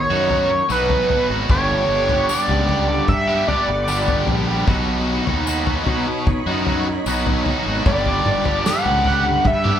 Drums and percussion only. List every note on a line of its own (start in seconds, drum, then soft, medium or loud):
0.30 floor tom medium
0.70 tambourine medium
0.90 floor tom medium
1.10 floor tom medium
1.50 kick loud
1.50 floor tom medium
2.09 floor tom medium
2.29 tambourine medium
2.49 floor tom medium
2.69 floor tom medium
3.08 kick loud
3.08 floor tom medium
3.48 floor tom medium
3.88 tambourine medium
4.08 floor tom medium
4.28 floor tom medium
4.67 kick loud
4.67 floor tom medium
5.27 floor tom medium
5.47 tambourine loud
5.67 floor tom medium
5.86 floor tom medium
6.27 kick loud
6.27 floor tom medium
6.66 floor tom medium
7.06 tambourine medium
7.26 floor tom medium
7.46 floor tom medium
7.86 kick loud
7.86 floor tom medium
8.06 floor tom medium
8.26 mid tom medium
8.45 floor tom medium
8.66 snare medium
8.66 tambourine medium
8.86 floor tom medium
9.05 floor tom medium
9.45 kick loud
9.45 floor tom medium
9.65 mid tom medium